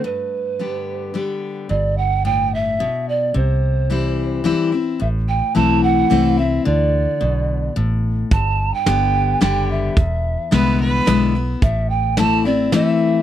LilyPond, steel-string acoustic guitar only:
\new Staff \with { instrumentName = "Steel-string acoustic guitar" } { \time 3/4 \key g \major \tempo 4 = 109 << { r4 <d g b g'>4 <d g b g'>4 | r2. | r4 <e g c' e'>4 <e g c' e'>8 <c' e'>8 | r4 <e a c' e'>4 <e a c' e'>8 <c' e'>8 |
r2. | r4 <d g b g'>4 <d g b g'>4 | r4 <d gis b e'>4 <d gis b e'>8 <b e'>8 | r4 <e a c' e'>8 <c' e'>8 <e a c' e'>4 | } \\ { g,2 r4 | g,4 a,4 b,4 | c2 r4 | a,2 r4 |
d4 b,4 a,4 | g,2 r4 | e,2 r4 | a,2 r4 | } >> }